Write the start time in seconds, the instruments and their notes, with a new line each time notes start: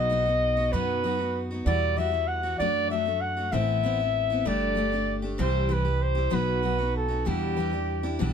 Already playing: upright bass B1, steel-string acoustic guitar B2 D#4 F#4, flugelhorn D#5
0.10 steel-string acoustic guitar F#3 B3 D#4 F#4
0.25 steel-string acoustic guitar B3 D#4 F#4
0.57 steel-string acoustic guitar B3 D#4 F#4
0.72 upright bass F#2, steel-string acoustic guitar B2 F#3 B3 D#4 F#4, flugelhorn B4
1.04 steel-string acoustic guitar F#3 B3 D#4 F#4
1.19 steel-string acoustic guitar B3 D#4 F#4
1.51 steel-string acoustic guitar B3 D#4 F#4
1.66 steel-string acoustic guitar E2 B2 E3 G3 E4 F#4, upright bass E2, flugelhorn D5
1.97 steel-string acoustic guitar E3 G3 E4 F#4, flugelhorn E5
2.11 steel-string acoustic guitar E3 G3 E4 F#4
2.27 flugelhorn F#5
2.43 steel-string acoustic guitar E3 G3 E4 F#4
2.59 upright bass F#2, steel-string acoustic guitar F#3 A3 D4 F#4, flugelhorn D5
2.90 steel-string acoustic guitar F#3 A3 D4 F#4, flugelhorn E5
3.05 steel-string acoustic guitar A3 D4 F#4
3.21 flugelhorn F#5
3.37 steel-string acoustic guitar A3 D4 F#4
3.52 upright bass A1, steel-string acoustic guitar A2 E3 B3 C4 E4, flugelhorn E5
3.83 steel-string acoustic guitar E3 B3 C4 E4
4.00 steel-string acoustic guitar B3 C4 E4
4.30 steel-string acoustic guitar B3 C4 E4
4.45 upright bass G1, steel-string acoustic guitar G3 A3 D4 G4, flugelhorn D5
4.75 steel-string acoustic guitar G3 A3 D4 G4
4.92 steel-string acoustic guitar A3 D4 G4
5.22 steel-string acoustic guitar A3 D4 G4
5.38 upright bass C2, steel-string acoustic guitar C3 E3 G3 E4 G4, flugelhorn C5
5.69 steel-string acoustic guitar E3 G3 E4 G4, flugelhorn B4
5.85 steel-string acoustic guitar G3 E4 G4
6.02 flugelhorn C5
6.15 steel-string acoustic guitar G3 E4 G4
6.30 upright bass B1, steel-string acoustic guitar B2 F#3 B3 D#4 F#4, flugelhorn B4
6.62 steel-string acoustic guitar F#3 B3 D#4 F#4
6.78 steel-string acoustic guitar B3 D#4 F#4
6.96 flugelhorn A4
7.08 steel-string acoustic guitar B3 D#4 F#4
7.25 steel-string acoustic guitar E2 B2 E3 G3 D4 E4, upright bass E2, flugelhorn G4
7.57 steel-string acoustic guitar E3 G3 D4 E4
7.71 steel-string acoustic guitar E3 G3 D4 E4
8.03 steel-string acoustic guitar E3 G3 D4 E4
8.19 upright bass B1, steel-string acoustic guitar E2 B2 E3 G3 D4 E4